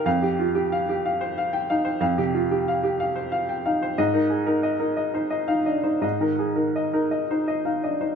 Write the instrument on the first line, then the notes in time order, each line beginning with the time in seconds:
upright piano
0.06 F2 F5
0.22 G4
0.39 F4
0.55 G4
0.72 F5
0.89 G4
1.05 F5
1.21 C5
1.38 F5
1.53 G5
1.70 D#4 F5
1.85 C5
2.00 F2 F5
2.18 C3 G4
2.34 F4
2.51 G4
2.68 F5
2.84 G4
3.00 F5
3.16 C5
3.32 F5
3.49 G5
3.66 D#4 F5
3.82 C5
3.98 G#2 D#5
4.14 D#4 A#4
4.30 G#4
4.46 D#4 A#4
4.63 D#5
4.79 D#4 A#4
4.97 D#5
5.14 D#4 C5
5.30 D#5
5.48 D#4 F5
5.66 D4 D#5
5.83 D#4 C5
6.01 G#2 D#5
6.21 D#3 A#4
6.39 G#4
6.56 D#4 A#4
6.76 D#5
6.93 D#4 A#4
7.11 D#5
7.31 D#4 C5
7.48 D#5
7.65 D#4 F5
7.83 D4 D#5
8.01 D#4 C5